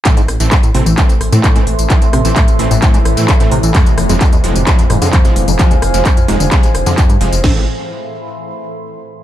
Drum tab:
CC |----------------|----------------|----------------|----------------|
HH |xxoxxxoxxxoxxxox|xxoxxxoxxxoxxxox|xxoxxxoxxxoxxxox|xxoxxxoxxxoxxxox|
TB |xx-xxx-xxx-xxx-x|xx-xxx-xxx-xxx-x|xx-xxx-xxx-xxx-x|xx-xxx-xxx-xxx-x|
CP |x---x---x---x---|x---x---x---x---|x---x---x---x---|x---x---x---x---|
SD |--r-------r-----|--r-------r-----|--r-------r-----|--r-------r-----|
BD |o---o---o---o---|o---o---o---o---|o---o---o---o---|o---o---o---o---|

CC |x---------------|
HH |----------------|
TB |----------------|
CP |----------------|
SD |o---------------|
BD |o---------------|